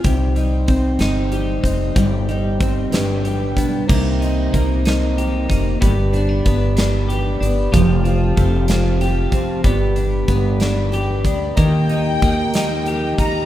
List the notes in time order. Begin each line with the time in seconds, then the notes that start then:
Already playing: C4 F4 G#4
0.04 C2 C3 G3 D#4 C5 G5, kick, closed hi-hat
0.36 G3 D#4, closed hi-hat
0.68 C4, kick, closed hi-hat
0.99 G1 D#4, snare, closed hi-hat
1.32 G3 G4, closed hi-hat
1.63 F1 C4 D#4, kick, closed hi-hat
1.96 G1 G3, kick, closed hi-hat
2.29 G3 D#4, closed hi-hat
2.60 C4, kick, closed hi-hat
2.91 G1 G2 G3 D4 B4, snare, closed hi-hat
3.24 G3 G4, closed hi-hat
3.57 B1 B3 D4, kick, closed hi-hat
3.87 C2 C3 A#3 D#4 G4 C5 A#5, kick, crash
4.21 D#4, closed hi-hat
4.53 C2 A#3, kick, closed hi-hat
4.85 D#4, snare, closed hi-hat
5.18 G4, closed hi-hat
5.49 F1 A#3 D#4, kick, closed hi-hat
5.81 G1 G2 B3 G4 D5 B5, kick, closed hi-hat
6.13 C4 D4, closed hi-hat
6.29 D4
6.45 G1 B3, kick, closed hi-hat
6.77 D4, snare, closed hi-hat
7.09 G4, closed hi-hat
7.41 G1 B3 D4, closed hi-hat
7.72 F1 F3 G4 F5 A5, kick, closed hi-hat
8.04 C4 F4, closed hi-hat
8.36 F1 A3 C4, kick, closed hi-hat
8.68 C4 F4, snare, closed hi-hat
9.01 G4, closed hi-hat
9.32 F1 C4, kick, closed hi-hat
9.64 G1 G2 B3 G4 D5 B5, kick, closed hi-hat
9.96 D4, closed hi-hat
10.28 G1 B3, kick, closed hi-hat
10.60 D4, snare, closed hi-hat
10.92 G4, closed hi-hat
11.24 D2 B3 D4, kick, closed hi-hat
11.55 D#2 D#3 A#3 G4 D#5 G5 A#5, kick, closed hi-hat
11.89 D#4, closed hi-hat
12.22 D#2 A#3, kick, closed hi-hat
12.54 D#4, snare, closed hi-hat
12.86 G4, closed hi-hat
13.18 D#2 A#3 D#4 A#5, kick, closed hi-hat